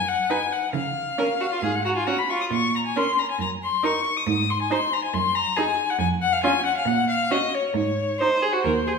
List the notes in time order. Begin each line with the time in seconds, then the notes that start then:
Already playing: F#2
0.08 F#5
0.30 D#4 B4 G#5
0.53 F#5
0.73 C#3 F5
1.18 C#4 A#4
1.41 F#4
1.53 F4
1.62 G#2 G#4
1.75 F#5
1.85 F#4 A#5
1.96 F4 G#5
2.07 C#4 F#4 A#5
2.18 B5
2.30 F4 C#6
2.41 D#6
2.51 A#2 C#6
2.76 A#5
2.86 G#5
2.96 C#4 A#4 C6
3.19 A#5
3.31 G#5
3.39 F#2 A#5
3.63 C6
3.83 D#4 A#4 C#6
4.17 D#6
4.27 G#2 D#6
4.50 C6
4.62 G#5
4.71 D#4 C5 C6
4.93 A#5
5.04 G#5
5.14 F#2 C6
5.35 A#5
5.55 D#4 G#4 G#5
5.90 F#5
5.99 F2 G#5
6.22 F#5
6.33 F5
6.43 C#4 F4 G#5
6.66 F#5
6.77 F5
6.85 A#2 F#5
7.09 F5
7.31 C#4 F#4 D#5
7.55 C#5
7.74 G#2 C#5
8.20 D#4 C5
8.43 G#4
8.53 F#4
8.64 D#2 A#4
8.87 G#4